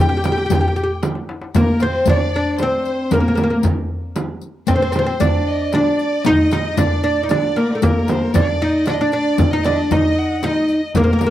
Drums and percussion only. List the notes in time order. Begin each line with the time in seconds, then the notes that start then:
0.24 riq, darbuka tek, frame drum
0.50 riq, darbuka dum, frame drum
0.76 riq, darbuka ka
1.03 riq, darbuka tek, frame drum
1.15 darbuka ka
1.29 darbuka tek
1.42 darbuka ka
1.55 riq, darbuka dum, frame drum
1.80 riq, darbuka tek, frame drum
2.06 riq, frame drum, darbuka dum
2.58 riq, darbuka tek, frame drum
2.85 riq, darbuka ka
3.11 riq, frame drum, darbuka dum
3.37 riq, darbuka tek, frame drum
3.63 riq, darbuka dum, frame drum
4.16 riq, darbuka tek, frame drum
4.41 riq, darbuka ka
4.67 riq, darbuka dum, frame drum
4.93 riq, darbuka tek, frame drum
5.20 riq, frame drum, darbuka dum
5.73 riq, darbuka tek, frame drum
5.99 riq, darbuka ka
6.25 riq, frame drum, darbuka dum
6.51 riq, darbuka tek, frame drum
6.77 riq, frame drum, darbuka dum
7.03 riq, darbuka ka
7.29 riq, darbuka tek, frame drum
7.44 darbuka ka
7.56 riq, darbuka tek
7.71 darbuka ka
7.82 riq, frame drum, darbuka dum
8.08 riq, darbuka tek, frame drum
8.34 riq, frame drum, darbuka dum
8.86 riq, darbuka tek, frame drum
9.12 riq, darbuka ka
9.38 riq, frame drum, darbuka dum
9.64 riq, darbuka tek, frame drum
9.91 riq, darbuka dum, frame drum
10.43 riq, darbuka tek, frame drum
10.68 riq, darbuka ka
10.95 riq, darbuka dum, frame drum
11.21 riq, darbuka tek, frame drum